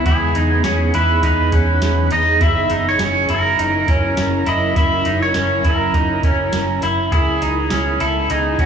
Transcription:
Already playing: B3
0.05 E2 E3 D#4 E4 G#4, kick, closed hi-hat
0.35 E2 D#4, closed hi-hat
0.64 E2 C#4, snare, closed hi-hat
0.94 E2 E4 B4, closed hi-hat
1.23 E2 D#4 B4, kick, closed hi-hat
1.52 E2 C#4, kick, closed hi-hat
1.82 E2, snare, closed hi-hat
2.11 E2 D#4 D#5, closed hi-hat
2.41 F#1 F#3 C#4 E4 A#4 E5, kick, closed hi-hat
2.70 F#1 D#4, closed hi-hat
2.89 C#5
2.99 F#1 C#4 C#5, snare, closed hi-hat
3.29 F#1 E4 A#4, closed hi-hat
3.59 F#1 D#4, closed hi-hat
3.88 F#1 C#4, kick, closed hi-hat
4.17 F#1, snare, closed hi-hat
4.46 F#1 E4 D#5, closed hi-hat
4.76 F#1 E4 E5, kick, closed hi-hat
5.05 F#1 D#4, closed hi-hat
5.22 C#5
5.34 F#1 C#4 C#5, snare, closed hi-hat
5.64 F#1 E4 A#4, kick, closed hi-hat
5.94 F#1 D#4, kick, closed hi-hat
6.23 F#1 C#4, kick, closed hi-hat
6.53 F#1, snare, closed hi-hat
6.82 F#1 E4, closed hi-hat
7.11 C#2 C#3 G#3 B3 E4 G#4, kick, closed hi-hat
7.42 C#2 D#4, closed hi-hat
7.70 C#2 C#4, snare, closed hi-hat
8.00 C#2 E4 A4, closed hi-hat
8.30 C#2 D#4 G#4, closed hi-hat
8.59 C#2 C#4 F#4, kick, closed hi-hat

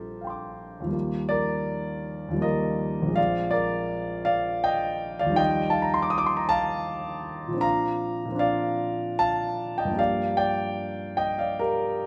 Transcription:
Already playing: A#1 F3 G3 C4 D4 G4 A4 A#4 C5
0.21 F5 G5
0.27 C6 D6
0.80 D#2 F3
0.86 G3 A#3
0.92 F4
1.29 A#4 D5
2.28 D#2 F3
2.34 G3 A#3
2.41 F4 A#4 D#5
3.02 A#1 F3
3.08 G#3 C4
3.15 F4 D5 F5
3.51 A#4 D5
4.25 D5 F5
4.64 D#5 G5
5.19 D#2 D5 F5
5.26 F3 G3
5.32 D#4 F4
5.36 D#5 G5
5.70 F5 A5
5.82 A#5
5.94 C6
6.02 D6
6.10 D#6
6.18 D6
6.26 C6
6.37 A#5
6.49 F5 A5
7.48 A#2 F3
7.54 C4 D4
7.59 F4 F5 A#5
8.25 A#2 F3
8.32 C4 D4
8.37 F4 D5 F5
9.19 F5 A5
9.78 D#5 G5
9.85 G2 F3
9.91 A#3 D4
9.97 G4 D5 F5
10.37 D5 G5
11.17 D#5 G5
11.39 D5 F5
11.59 G4 A#4

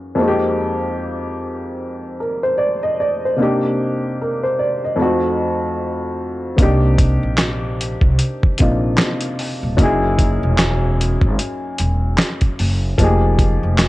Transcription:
Already playing: F#2 E3 A#3 C#4 D#4 G#4
0.15 F2 G#3 A#3 C4
0.20 D#4 F#4
0.28 G4
2.20 A#4
2.43 C5
2.58 D5
2.83 D#5
3.00 D5
3.25 C5
3.36 C3 A#3 D4
3.41 D#4 G4
4.22 A#4
4.43 C5
4.59 D5
4.85 D#5
4.96 F2 A3 C4
5.01 D#4 F#4
6.56 C2 C3 A#3 D4, kick, closed hi-hat
6.61 D#4 G4
6.98 kick, closed hi-hat
7.23 A#1
7.38 snare, clap, closed hi-hat
7.81 closed hi-hat
8.01 C2, kick
8.19 closed hi-hat
8.43 kick
8.58 A#1 C3 A#3 D4 D#4, kick, closed hi-hat
8.62 F4
8.98 snare, clap, closed hi-hat
9.21 closed hi-hat
9.39 open hi-hat
9.63 D#1
9.77 F#1 F#2 A#3 D#4, kick, closed hi-hat
9.82 E4 G#4
10.19 kick, closed hi-hat
10.43 E1
10.58 snare, clap, closed hi-hat
11.01 closed hi-hat
11.21 G#1, kick
11.39 closed hi-hat
11.78 E1, closed hi-hat
12.18 snare, clap, closed hi-hat
12.41 kick, closed hi-hat
12.59 F#1, open hi-hat
12.98 F1 F3 A#3 D#4, kick, closed hi-hat
13.02 G4 G#4
13.39 kick, closed hi-hat
13.63 F1
13.78 snare, clap, closed hi-hat

